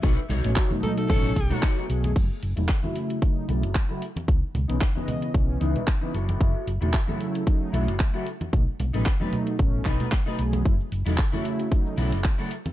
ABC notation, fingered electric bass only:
X:1
M:4/4
L:1/16
Q:"Swing 16ths" 1/4=113
K:F#dor
V:1 name="Fingered electric bass" clef=bass
B,,, z B,,, A,,, z4 A,,,2 B,,, z3 B,,,2 | F,,, z F,,, E,,, z6 B,,, F,,, z4 | C,, z C,, B,,, z4 B,,,2 C,, z3 F,,,2 | F,,, z F,,, E,,, z6 B,,, F,,, z4 |
B,,, z B,,, A,,, z4 A,,,2 B,,, z3 B,,,2 | F,,, z F,,, E,,, z6 B,,, F,,, z4 |]